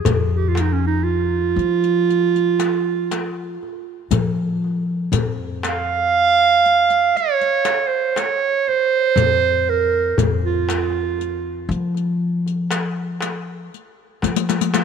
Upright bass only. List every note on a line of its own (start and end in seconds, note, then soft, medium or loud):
0.06 1.54 F2 medium
1.56 3.56 F3 medium
4.11 5.08 F3 medium
5.12 7.10 F2 medium
9.16 10.14 F2 loud
10.18 11.66 F2 medium
11.69 13.68 F3 loud
14.23 14.84 F3 medium